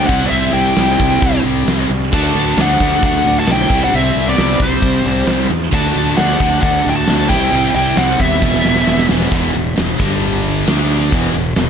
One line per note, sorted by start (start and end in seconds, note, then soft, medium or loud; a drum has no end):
0.04 0.23 C4 medium
0.04 0.26 F#5 medium
0.09 0.28 C2 medium
0.09 0.75 C3 medium
0.09 0.76 G3 medium
0.09 0.76 C4 loud
0.09 1.89 E4 loud
0.09 kick loud
0.09 crash loud
0.25 0.30 B3 medium
0.25 0.29 D5 medium
0.29 0.50 C2 loud
0.29 0.52 C4 medium
0.29 0.52 E5 loud
0.51 0.73 C2 medium
0.51 1.39 E4 medium
0.51 1.40 G5 medium
0.76 0.96 C2 medium
0.76 1.88 C3 medium
0.76 1.89 G3 medium
0.76 1.89 C4 medium
0.76 snare loud
0.76 open hi-hat medium
1.00 1.19 C2 medium
1.00 kick medium
1.22 1.41 C2 medium
1.22 kick loud
1.22 open hi-hat medium
1.45 1.64 C2 medium
1.67 1.86 C2 medium
1.67 snare loud
1.67 open hi-hat medium
1.79 snare soft
1.90 2.13 C2 medium
2.13 2.31 D2 loud
2.13 2.79 D3 loud
2.13 3.69 F#3 loud
2.13 2.80 A3 loud
2.13 2.80 D4 loud
2.13 2.56 F#4 medium
2.13 2.60 A5 loud
2.13 kick loud
2.13 crash loud
2.35 2.54 D2 medium
2.57 2.76 D2 medium
2.57 3.00 D4 medium
2.57 snare loud
2.57 open hi-hat medium
2.61 3.02 F#5 loud
2.80 2.99 D2 medium
2.80 3.69 D3 medium
2.80 3.70 A3 medium
2.80 3.69 D4 loud
2.80 kick medium
2.80 snare soft
3.03 3.21 D2 loud
3.03 3.35 D4 medium
3.03 3.39 F#5 loud
3.03 kick loud
3.03 open hi-hat medium
3.26 3.44 D2 medium
3.39 3.49 F#4 medium
3.39 3.50 A5 loud
3.47 3.66 B1 medium
3.47 3.81 E4 medium
3.47 snare loud
3.47 open hi-hat medium
3.52 3.84 G5 medium
3.59 snare soft
3.70 3.89 C2 medium
3.70 4.36 C3 medium
3.70 4.37 G3 medium
3.70 4.37 C4 loud
3.70 5.49 E4 loud
3.70 kick loud
3.84 3.94 D4 medium
3.84 3.93 F#5 loud
3.93 4.12 C2 medium
3.93 4.26 C4 medium
3.93 4.29 E5 medium
3.93 open hi-hat medium
4.15 4.34 C2 medium
4.29 4.59 B3 medium
4.29 4.63 D5 medium
4.37 4.57 C2 loud
4.37 5.48 C3 medium
4.37 5.49 G3 medium
4.37 5.50 C4 medium
4.37 snare loud
4.37 open hi-hat medium
4.60 4.79 C2 medium
4.60 5.47 G3 medium
4.60 5.47 C5 medium
4.60 kick medium
4.82 5.01 C2 medium
4.82 kick loud
4.82 open hi-hat medium
5.06 5.24 C2 loud
5.27 5.46 C2 medium
5.27 snare loud
5.27 open hi-hat medium
5.50 5.68 E2 medium
5.72 5.91 D2 loud
5.72 6.38 D3 loud
5.72 7.28 F#3 loud
5.72 6.39 A3 loud
5.72 6.39 D4 loud
5.72 6.15 F#4 medium
5.72 6.17 A5 loud
5.72 kick loud
5.72 crash loud
5.96 6.14 D2 medium
6.17 6.37 D2 medium
6.17 6.60 D4 medium
6.17 6.61 F#5 loud
6.17 snare loud
6.17 open hi-hat medium
6.40 6.59 D2 medium
6.40 7.29 D3 medium
6.40 7.29 A3 medium
6.40 7.29 D4 medium
6.40 kick medium
6.40 snare soft
6.61 6.81 D2 loud
6.61 6.86 D4 medium
6.61 6.87 F#5 loud
6.61 kick loud
6.61 open hi-hat medium
6.87 7.04 D2 loud
6.87 6.95 E4 medium
6.87 6.96 G5 medium
6.95 7.27 F#4 medium
6.95 7.29 A5 loud
7.07 7.32 D2 medium
7.07 snare loud
7.07 open hi-hat medium
7.19 snare soft
7.29 7.48 C2 medium
7.29 7.95 C3 loud
7.29 7.96 G3 loud
7.29 7.96 C4 loud
7.29 7.71 E4 medium
7.29 8.42 E4 loud
7.29 7.74 G5 loud
7.29 kick loud
7.29 crash loud
7.52 7.71 C2 loud
7.74 7.93 C2 medium
7.74 7.96 E4 medium
7.74 7.96 G5 medium
7.96 8.16 C2 medium
7.96 8.40 C3 medium
7.96 8.41 G3 medium
7.96 8.17 C4 medium
7.96 8.42 C4 medium
7.96 8.18 F#5 medium
7.96 snare loud
7.96 open hi-hat medium
8.18 8.38 D#2 medium
8.18 9.05 B3 medium
8.18 9.06 E5 medium
8.18 kick medium
8.42 8.61 E1 loud
8.42 9.08 E2 medium
8.42 9.09 B2 medium
8.42 9.09 E3 loud
8.42 9.30 G3 medium
8.42 9.31 B3 loud
8.42 9.31 E4 medium
8.42 kick loud
8.42 snare medium
8.53 snare medium
8.65 8.84 E1 medium
8.65 snare medium
8.76 snare medium
8.87 9.06 E1 loud
8.87 snare medium
8.98 snare medium
9.09 9.28 E1 medium
9.09 9.32 E2 medium
9.09 9.31 B2 medium
9.09 9.31 E3 medium
9.09 snare loud
9.20 snare loud
9.32 9.53 E1 loud
9.32 9.54 E2 loud
9.32 9.55 B2 loud
9.32 9.55 E3 loud
9.32 kick loud
9.32 crash medium
9.54 9.75 E1 medium
9.54 9.73 E2 medium
9.54 9.73 B2 medium
9.77 9.98 E1 medium
9.77 9.95 E2 medium
9.77 9.96 B2 medium
9.77 snare loud
9.77 crash medium
10.00 10.63 G1 loud
10.00 10.67 G2 medium
10.00 10.66 D3 loud
10.00 10.67 G3 loud
10.00 kick loud
10.23 crash medium
10.67 11.09 D2 medium
10.67 11.11 D3 medium
10.67 11.11 A3 medium
10.67 11.11 D4 loud
10.67 snare loud
10.67 crash medium
11.12 11.33 E1 medium
11.12 11.33 E2 loud
11.12 11.34 B2 loud
11.12 11.34 E3 loud
11.12 kick loud
11.12 crash medium
11.34 11.55 E1 medium
11.34 11.52 E2 medium
11.34 11.53 B2 medium
11.56 11.70 E1 medium
11.56 11.70 E2 medium
11.56 11.70 B2 medium
11.56 snare loud
11.56 crash medium